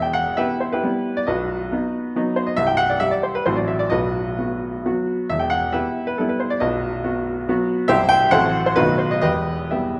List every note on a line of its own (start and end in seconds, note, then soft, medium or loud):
0.00 0.37 E1 soft
0.00 0.37 E2 medium
0.00 0.15 G5 medium
0.13 0.38 F#5 medium
0.37 0.80 B3 soft
0.37 0.72 E4 soft
0.37 0.60 G4 medium
0.37 0.60 B4 medium
0.37 0.61 E5 medium
0.60 0.73 C5 medium
0.72 0.83 E4 soft
0.72 1.14 G4 medium
0.72 1.17 B4 medium
0.83 1.24 G3 soft
0.83 1.24 B3 soft
0.83 1.24 E4 soft
1.17 1.28 D5 medium
1.26 1.71 B0 soft
1.26 1.71 B1 medium
1.26 2.33 F#4 medium
1.26 2.33 B4 medium
1.26 2.36 D#5 medium
1.72 2.12 B3 soft
1.72 2.12 D#4 soft
2.16 2.54 F#3 medium
2.16 2.54 B3 medium
2.16 2.54 D#4 medium
2.36 2.47 C5 medium
2.47 2.57 D#5 medium
2.57 3.00 C1 medium
2.57 3.00 C2 medium
2.57 2.68 E5 loud
2.67 2.78 G5 medium
2.77 2.89 F#5 loud
2.90 3.01 D5 medium
3.00 3.41 G3 soft
3.00 3.41 G4 medium
3.00 3.12 E5 medium
3.11 3.23 D5 medium
3.23 3.34 C5 medium
3.35 3.46 B4 medium
3.46 3.89 A1 medium
3.46 3.89 A2 medium
3.46 3.86 F#3 soft
3.46 3.86 C4 soft
3.46 3.87 F#4 soft
3.46 3.56 C5 medium
3.56 3.67 D5 medium
3.68 3.79 E5 medium
3.79 3.90 D5 medium
3.90 4.36 B0 medium
3.90 4.36 B1 medium
3.90 4.37 F#4 medium
3.90 4.82 B4 medium
3.90 4.85 D#5 medium
4.38 4.82 B3 soft
4.38 4.82 F#4 soft
4.86 5.25 F#3 soft
4.86 5.25 B3 soft
4.86 5.26 F#4 medium
5.29 5.73 E1 soft
5.29 5.73 E2 medium
5.29 5.40 E5 medium
5.39 5.51 G5 medium
5.50 5.73 F#5 medium
5.72 6.15 B3 soft
5.72 6.15 E4 soft
5.72 6.05 G4 medium
5.72 6.05 B4 medium
5.72 6.07 E5 medium
6.07 6.18 B4 medium
6.18 6.58 G3 soft
6.18 6.58 B3 soft
6.18 6.58 E4 medium
6.18 6.29 A4 medium
6.29 6.40 B4 medium
6.40 6.51 C5 medium
6.50 6.61 D5 medium
6.60 7.03 B0 medium
6.60 7.03 B1 medium
6.60 7.03 F#4 soft
6.60 7.64 B4 soft
6.60 7.68 D#5 medium
7.04 7.44 B3 soft
7.04 7.44 F#4 medium
7.49 7.86 F#3 medium
7.49 7.86 B3 medium
7.49 7.86 F#4 medium
7.88 8.31 C1 medium
7.88 8.31 C2 medium
7.88 8.28 G3 medium
7.88 8.28 E4 medium
7.88 8.08 G4 medium
7.88 8.08 C5 medium
7.88 8.09 E5 loud
8.09 8.31 G5 loud
8.31 8.76 A1 medium
8.31 8.76 A2 medium
8.31 8.73 F#3 medium
8.31 8.74 A3 soft
8.31 8.74 C4 medium
8.31 8.64 A4 medium
8.31 8.64 C5 medium
8.31 8.66 F#5 loud
8.66 8.77 C5 medium
8.76 9.21 B0 medium
8.76 9.21 B1 medium
8.76 9.19 D#3 soft
8.76 9.19 A3 soft
8.76 9.19 B3 soft
8.76 8.98 D#4 medium
8.76 8.98 F#4 medium
8.76 8.99 B4 loud
8.98 9.10 C5 medium
9.11 9.20 D#5 medium
9.21 9.71 E1 medium
9.21 9.71 E2 medium
9.21 9.68 G4 medium
9.21 9.68 B4 medium
9.21 9.71 D#5 medium
9.71 10.00 G3 soft
9.71 10.00 B3 soft
9.71 10.00 G4 soft
9.71 10.00 B4 soft
9.71 10.00 E5 medium